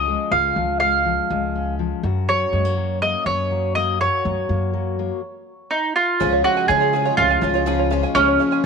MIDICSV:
0, 0, Header, 1, 8, 480
1, 0, Start_track
1, 0, Key_signature, -5, "major"
1, 0, Tempo, 489796
1, 308, Time_signature, 4, 2, 24, 8
1, 8484, End_track
2, 0, Start_track
2, 0, Title_t, "Five-string banjo"
2, 0, Program_c, 0, 105
2, 6080, Note_on_c, 0, 68, 79
2, 6201, Note_on_c, 0, 73, 72
2, 6316, Note_on_c, 0, 77, 76
2, 6433, Note_off_c, 0, 73, 0
2, 6437, Note_on_c, 0, 80, 89
2, 6544, Note_off_c, 0, 77, 0
2, 6556, Note_on_c, 0, 77, 77
2, 6558, Note_off_c, 0, 68, 0
2, 6674, Note_on_c, 0, 73, 67
2, 6796, Note_on_c, 0, 68, 83
2, 6904, Note_off_c, 0, 73, 0
2, 6915, Note_on_c, 0, 73, 71
2, 6916, Note_off_c, 0, 80, 0
2, 7029, Note_off_c, 0, 77, 0
2, 7041, Note_on_c, 0, 77, 76
2, 7159, Note_on_c, 0, 80, 91
2, 7269, Note_off_c, 0, 77, 0
2, 7274, Note_off_c, 0, 68, 0
2, 7281, Note_on_c, 0, 77, 74
2, 7389, Note_off_c, 0, 73, 0
2, 7401, Note_on_c, 0, 73, 75
2, 7518, Note_on_c, 0, 68, 79
2, 7627, Note_off_c, 0, 73, 0
2, 7634, Note_off_c, 0, 80, 0
2, 7639, Note_on_c, 0, 73, 74
2, 7743, Note_off_c, 0, 77, 0
2, 7754, Note_on_c, 0, 77, 69
2, 7873, Note_on_c, 0, 80, 90
2, 7981, Note_off_c, 0, 68, 0
2, 7993, Note_on_c, 0, 68, 76
2, 8102, Note_off_c, 0, 73, 0
2, 8114, Note_on_c, 0, 73, 73
2, 8219, Note_off_c, 0, 77, 0
2, 8231, Note_on_c, 0, 77, 70
2, 8338, Note_off_c, 0, 80, 0
2, 8350, Note_on_c, 0, 80, 95
2, 8453, Note_off_c, 0, 77, 0
2, 8469, Note_off_c, 0, 68, 0
2, 8484, Note_off_c, 0, 73, 0
2, 8484, Note_off_c, 0, 80, 0
2, 8484, End_track
3, 0, Start_track
3, 0, Title_t, "Mandolin"
3, 0, Program_c, 1, 25
3, 0, Note_on_c, 1, 75, 79
3, 310, Note_on_c, 1, 77, 81
3, 324, Note_off_c, 1, 75, 0
3, 771, Note_off_c, 1, 77, 0
3, 783, Note_on_c, 1, 77, 79
3, 1711, Note_off_c, 1, 77, 0
3, 2242, Note_on_c, 1, 73, 88
3, 2922, Note_off_c, 1, 73, 0
3, 2960, Note_on_c, 1, 75, 88
3, 3192, Note_off_c, 1, 75, 0
3, 3196, Note_on_c, 1, 73, 80
3, 3673, Note_off_c, 1, 73, 0
3, 3677, Note_on_c, 1, 75, 83
3, 3924, Note_off_c, 1, 75, 0
3, 3928, Note_on_c, 1, 73, 81
3, 5593, Note_on_c, 1, 63, 64
3, 5805, Note_off_c, 1, 73, 0
3, 5834, Note_off_c, 1, 63, 0
3, 5838, Note_on_c, 1, 65, 73
3, 6310, Note_off_c, 1, 65, 0
3, 6314, Note_on_c, 1, 66, 83
3, 6544, Note_off_c, 1, 66, 0
3, 6547, Note_on_c, 1, 68, 86
3, 7024, Note_off_c, 1, 68, 0
3, 7028, Note_on_c, 1, 65, 83
3, 7986, Note_on_c, 1, 61, 91
3, 8015, Note_off_c, 1, 65, 0
3, 8480, Note_off_c, 1, 61, 0
3, 8484, End_track
4, 0, Start_track
4, 0, Title_t, "Twelve-string acoustic guitar"
4, 0, Program_c, 2, 25
4, 6074, Note_on_c, 2, 49, 71
4, 6081, Note_on_c, 2, 53, 82
4, 6083, Note_on_c, 2, 56, 73
4, 6091, Note_on_c, 2, 61, 83
4, 6094, Note_on_c, 2, 65, 85
4, 6304, Note_off_c, 2, 53, 0
4, 6313, Note_off_c, 2, 56, 0
4, 6315, Note_on_c, 2, 53, 60
4, 6316, Note_off_c, 2, 49, 0
4, 6321, Note_off_c, 2, 61, 0
4, 6325, Note_on_c, 2, 56, 57
4, 6326, Note_off_c, 2, 65, 0
4, 6333, Note_on_c, 2, 61, 61
4, 6341, Note_on_c, 2, 65, 72
4, 6422, Note_off_c, 2, 65, 0
4, 6433, Note_on_c, 2, 65, 51
4, 6437, Note_off_c, 2, 53, 0
4, 6438, Note_off_c, 2, 61, 0
4, 6441, Note_off_c, 2, 56, 0
4, 6450, Note_on_c, 2, 61, 52
4, 6461, Note_on_c, 2, 56, 44
4, 6552, Note_on_c, 2, 49, 74
4, 6553, Note_off_c, 2, 56, 0
4, 6555, Note_off_c, 2, 65, 0
4, 6558, Note_off_c, 2, 61, 0
4, 6560, Note_on_c, 2, 53, 80
4, 6564, Note_on_c, 2, 56, 83
4, 6570, Note_on_c, 2, 61, 79
4, 6574, Note_on_c, 2, 65, 81
4, 6656, Note_off_c, 2, 65, 0
4, 6668, Note_on_c, 2, 65, 57
4, 6671, Note_off_c, 2, 61, 0
4, 6674, Note_off_c, 2, 49, 0
4, 6679, Note_off_c, 2, 53, 0
4, 6681, Note_off_c, 2, 56, 0
4, 6683, Note_on_c, 2, 61, 48
4, 6695, Note_on_c, 2, 56, 43
4, 6791, Note_off_c, 2, 56, 0
4, 6791, Note_on_c, 2, 53, 61
4, 6792, Note_off_c, 2, 65, 0
4, 6799, Note_off_c, 2, 61, 0
4, 6802, Note_on_c, 2, 56, 59
4, 6809, Note_on_c, 2, 61, 65
4, 6821, Note_on_c, 2, 65, 68
4, 6900, Note_off_c, 2, 65, 0
4, 6911, Note_on_c, 2, 65, 55
4, 6914, Note_off_c, 2, 53, 0
4, 6914, Note_off_c, 2, 61, 0
4, 6919, Note_off_c, 2, 56, 0
4, 6926, Note_on_c, 2, 61, 50
4, 6938, Note_on_c, 2, 56, 42
4, 7263, Note_off_c, 2, 56, 0
4, 7264, Note_on_c, 2, 53, 59
4, 7271, Note_off_c, 2, 61, 0
4, 7272, Note_off_c, 2, 65, 0
4, 7275, Note_on_c, 2, 56, 59
4, 7283, Note_on_c, 2, 61, 72
4, 7290, Note_on_c, 2, 65, 67
4, 7374, Note_off_c, 2, 65, 0
4, 7386, Note_on_c, 2, 65, 52
4, 7389, Note_off_c, 2, 53, 0
4, 7391, Note_off_c, 2, 61, 0
4, 7394, Note_off_c, 2, 56, 0
4, 7403, Note_on_c, 2, 61, 50
4, 7415, Note_on_c, 2, 56, 47
4, 7505, Note_off_c, 2, 56, 0
4, 7506, Note_on_c, 2, 49, 75
4, 7507, Note_off_c, 2, 61, 0
4, 7509, Note_off_c, 2, 65, 0
4, 7510, Note_on_c, 2, 53, 90
4, 7517, Note_on_c, 2, 56, 82
4, 7519, Note_on_c, 2, 61, 89
4, 7524, Note_on_c, 2, 65, 86
4, 7735, Note_off_c, 2, 53, 0
4, 7745, Note_off_c, 2, 56, 0
4, 7747, Note_on_c, 2, 53, 61
4, 7748, Note_off_c, 2, 49, 0
4, 7755, Note_off_c, 2, 61, 0
4, 7757, Note_off_c, 2, 65, 0
4, 7757, Note_on_c, 2, 56, 62
4, 7766, Note_on_c, 2, 61, 74
4, 7774, Note_on_c, 2, 65, 70
4, 7855, Note_off_c, 2, 65, 0
4, 7866, Note_on_c, 2, 65, 50
4, 7869, Note_off_c, 2, 53, 0
4, 7870, Note_off_c, 2, 61, 0
4, 7874, Note_off_c, 2, 56, 0
4, 7882, Note_on_c, 2, 61, 46
4, 7897, Note_on_c, 2, 56, 42
4, 7987, Note_off_c, 2, 56, 0
4, 7987, Note_on_c, 2, 49, 80
4, 7988, Note_off_c, 2, 65, 0
4, 7991, Note_off_c, 2, 61, 0
4, 7993, Note_on_c, 2, 53, 82
4, 7998, Note_on_c, 2, 56, 87
4, 8003, Note_on_c, 2, 61, 88
4, 8008, Note_on_c, 2, 65, 93
4, 8213, Note_off_c, 2, 53, 0
4, 8220, Note_off_c, 2, 56, 0
4, 8225, Note_on_c, 2, 53, 56
4, 8227, Note_off_c, 2, 49, 0
4, 8231, Note_off_c, 2, 61, 0
4, 8232, Note_on_c, 2, 56, 61
4, 8238, Note_off_c, 2, 65, 0
4, 8242, Note_on_c, 2, 61, 67
4, 8252, Note_on_c, 2, 65, 67
4, 8329, Note_off_c, 2, 65, 0
4, 8341, Note_on_c, 2, 65, 51
4, 8344, Note_off_c, 2, 61, 0
4, 8346, Note_off_c, 2, 53, 0
4, 8350, Note_off_c, 2, 56, 0
4, 8356, Note_on_c, 2, 61, 52
4, 8367, Note_on_c, 2, 56, 47
4, 8462, Note_off_c, 2, 56, 0
4, 8464, Note_off_c, 2, 65, 0
4, 8467, Note_off_c, 2, 61, 0
4, 8484, End_track
5, 0, Start_track
5, 0, Title_t, "Upright piano"
5, 0, Program_c, 3, 0
5, 6075, Note_on_c, 3, 53, 90
5, 6076, Note_on_c, 3, 68, 75
5, 6077, Note_on_c, 3, 37, 59
5, 6077, Note_on_c, 3, 61, 82
5, 6077, Note_on_c, 3, 73, 99
5, 6080, Note_on_c, 3, 49, 56
5, 6281, Control_c, 3, 64, 127
5, 6284, Note_off_c, 3, 53, 0
5, 6284, Note_off_c, 3, 68, 0
5, 6285, Note_off_c, 3, 61, 0
5, 6285, Note_off_c, 3, 73, 0
5, 6316, Note_on_c, 3, 53, 72
5, 6316, Note_on_c, 3, 61, 67
5, 6317, Note_on_c, 3, 75, 80
5, 6319, Note_on_c, 3, 68, 62
5, 6524, Note_off_c, 3, 53, 0
5, 6524, Note_off_c, 3, 61, 0
5, 6524, Note_off_c, 3, 75, 0
5, 6525, Note_off_c, 3, 68, 0
5, 6559, Note_on_c, 3, 53, 69
5, 6559, Note_on_c, 3, 68, 64
5, 6561, Note_on_c, 3, 73, 73
5, 6562, Note_on_c, 3, 61, 61
5, 6765, Note_off_c, 3, 53, 0
5, 6765, Note_off_c, 3, 68, 0
5, 6766, Note_off_c, 3, 61, 0
5, 6766, Note_off_c, 3, 73, 0
5, 6797, Note_on_c, 3, 61, 66
5, 6797, Note_on_c, 3, 73, 74
5, 6800, Note_on_c, 3, 53, 68
5, 7004, Note_off_c, 3, 61, 0
5, 7004, Note_off_c, 3, 73, 0
5, 7005, Note_off_c, 3, 53, 0
5, 7043, Note_on_c, 3, 53, 93
5, 7043, Note_on_c, 3, 68, 88
5, 7044, Note_on_c, 3, 73, 107
5, 7046, Note_on_c, 3, 61, 83
5, 7246, Note_off_c, 3, 53, 0
5, 7246, Note_off_c, 3, 68, 0
5, 7246, Note_off_c, 3, 73, 0
5, 7247, Note_off_c, 3, 61, 0
5, 7280, Note_on_c, 3, 61, 66
5, 7281, Note_on_c, 3, 68, 68
5, 7281, Note_on_c, 3, 73, 81
5, 7283, Note_on_c, 3, 53, 77
5, 7484, Note_off_c, 3, 61, 0
5, 7484, Note_off_c, 3, 68, 0
5, 7484, Note_off_c, 3, 73, 0
5, 7485, Note_off_c, 3, 53, 0
5, 7516, Note_on_c, 3, 53, 73
5, 7517, Note_on_c, 3, 61, 69
5, 7517, Note_on_c, 3, 68, 68
5, 7518, Note_on_c, 3, 73, 78
5, 7721, Note_off_c, 3, 53, 0
5, 7721, Note_off_c, 3, 61, 0
5, 7721, Note_off_c, 3, 68, 0
5, 7722, Note_off_c, 3, 73, 0
5, 7754, Note_on_c, 3, 53, 81
5, 7756, Note_on_c, 3, 61, 78
5, 7757, Note_on_c, 3, 68, 75
5, 7757, Note_on_c, 3, 73, 88
5, 7950, Note_off_c, 3, 37, 0
5, 7952, Note_off_c, 3, 49, 0
5, 7959, Note_off_c, 3, 53, 0
5, 7960, Note_off_c, 3, 61, 0
5, 7960, Note_off_c, 3, 73, 0
5, 7961, Note_off_c, 3, 68, 0
5, 7996, Note_on_c, 3, 37, 61
5, 7997, Note_on_c, 3, 53, 86
5, 7997, Note_on_c, 3, 68, 81
5, 7999, Note_on_c, 3, 61, 75
5, 8000, Note_on_c, 3, 73, 100
5, 8003, Note_on_c, 3, 49, 62
5, 8200, Note_off_c, 3, 53, 0
5, 8200, Note_off_c, 3, 68, 0
5, 8201, Note_off_c, 3, 61, 0
5, 8201, Note_off_c, 3, 73, 0
5, 8228, Note_on_c, 3, 61, 66
5, 8229, Note_on_c, 3, 68, 68
5, 8232, Note_on_c, 3, 53, 73
5, 8435, Note_off_c, 3, 61, 0
5, 8435, Note_off_c, 3, 68, 0
5, 8436, Note_off_c, 3, 53, 0
5, 8484, Note_off_c, 3, 37, 0
5, 8484, Note_off_c, 3, 49, 0
5, 8484, End_track
6, 0, Start_track
6, 0, Title_t, "Tonewheel organ"
6, 0, Program_c, 4, 16
6, 6077, Note_on_c, 4, 56, 57
6, 6082, Note_on_c, 4, 53, 66
6, 6084, Note_on_c, 4, 61, 65
6, 7970, Note_off_c, 4, 56, 0
6, 8002, Note_on_c, 4, 58, 57
6, 8484, Note_off_c, 4, 53, 0
6, 8484, Note_off_c, 4, 58, 0
6, 8484, Note_off_c, 4, 61, 0
6, 8484, End_track
7, 0, Start_track
7, 0, Title_t, "Steel-string acoustic guitar"
7, 0, Program_c, 5, 25
7, 0, Note_on_c, 5, 53, 58
7, 0, Note_on_c, 5, 61, 55
7, 0, Note_on_c, 5, 65, 61
7, 70, Note_on_c, 5, 56, 56
7, 279, Note_off_c, 5, 53, 0
7, 303, Note_off_c, 5, 65, 0
7, 307, Note_on_c, 5, 49, 64
7, 315, Note_on_c, 5, 65, 65
7, 549, Note_off_c, 5, 49, 0
7, 556, Note_on_c, 5, 53, 56
7, 788, Note_off_c, 5, 56, 0
7, 800, Note_on_c, 5, 56, 54
7, 1021, Note_off_c, 5, 53, 0
7, 1033, Note_on_c, 5, 53, 57
7, 1272, Note_off_c, 5, 56, 0
7, 1284, Note_on_c, 5, 56, 57
7, 1519, Note_off_c, 5, 61, 0
7, 1523, Note_on_c, 5, 61, 55
7, 1743, Note_off_c, 5, 53, 0
7, 1755, Note_on_c, 5, 53, 60
7, 1966, Note_off_c, 5, 53, 0
7, 1998, Note_off_c, 5, 65, 0
7, 1999, Note_on_c, 5, 42, 69
7, 2001, Note_off_c, 5, 56, 0
7, 2007, Note_on_c, 5, 66, 61
7, 2238, Note_on_c, 5, 54, 59
7, 2479, Note_on_c, 5, 56, 55
7, 2595, Note_off_c, 5, 56, 0
7, 2595, Note_on_c, 5, 58, 44
7, 2710, Note_off_c, 5, 54, 0
7, 2714, Note_on_c, 5, 54, 57
7, 2952, Note_off_c, 5, 58, 0
7, 2964, Note_on_c, 5, 58, 52
7, 3201, Note_off_c, 5, 61, 0
7, 3205, Note_on_c, 5, 61, 54
7, 3428, Note_off_c, 5, 54, 0
7, 3440, Note_on_c, 5, 54, 59
7, 3675, Note_off_c, 5, 58, 0
7, 3686, Note_on_c, 5, 58, 57
7, 3892, Note_off_c, 5, 54, 0
7, 3894, Note_off_c, 5, 42, 0
7, 3894, Note_off_c, 5, 61, 0
7, 3895, Note_off_c, 5, 58, 0
7, 3898, Note_off_c, 5, 66, 0
7, 3922, Note_on_c, 5, 42, 66
7, 3927, Note_on_c, 5, 66, 63
7, 4165, Note_on_c, 5, 54, 61
7, 4410, Note_on_c, 5, 58, 53
7, 4629, Note_off_c, 5, 54, 0
7, 4640, Note_on_c, 5, 54, 59
7, 4879, Note_off_c, 5, 58, 0
7, 4891, Note_on_c, 5, 58, 51
7, 5092, Note_off_c, 5, 54, 0
7, 5093, Note_off_c, 5, 42, 0
7, 5095, Note_off_c, 5, 66, 0
7, 5097, Note_off_c, 5, 58, 0
7, 8484, End_track
8, 0, Start_track
8, 0, Title_t, "Upright bass"
8, 0, Program_c, 6, 32
8, 0, Note_on_c, 6, 37, 77
8, 140, Note_off_c, 6, 37, 0
8, 307, Note_on_c, 6, 37, 77
8, 506, Note_off_c, 6, 37, 0
8, 550, Note_on_c, 6, 37, 74
8, 1146, Note_off_c, 6, 37, 0
8, 1278, Note_on_c, 6, 37, 81
8, 1872, Note_off_c, 6, 37, 0
8, 1993, Note_on_c, 6, 42, 85
8, 2391, Note_off_c, 6, 42, 0
8, 2476, Note_on_c, 6, 42, 79
8, 3072, Note_off_c, 6, 42, 0
8, 3193, Note_on_c, 6, 42, 86
8, 3989, Note_off_c, 6, 42, 0
8, 4167, Note_on_c, 6, 42, 79
8, 4363, Note_off_c, 6, 42, 0
8, 4402, Note_on_c, 6, 42, 76
8, 4995, Note_off_c, 6, 42, 0
8, 6083, Note_on_c, 6, 37, 98
8, 6279, Note_off_c, 6, 37, 0
8, 6560, Note_on_c, 6, 49, 97
8, 6953, Note_off_c, 6, 49, 0
8, 7034, Note_on_c, 6, 37, 106
8, 7232, Note_off_c, 6, 37, 0
8, 7270, Note_on_c, 6, 37, 94
8, 7863, Note_off_c, 6, 37, 0
8, 7987, Note_on_c, 6, 37, 91
8, 8185, Note_off_c, 6, 37, 0
8, 8484, End_track
0, 0, End_of_file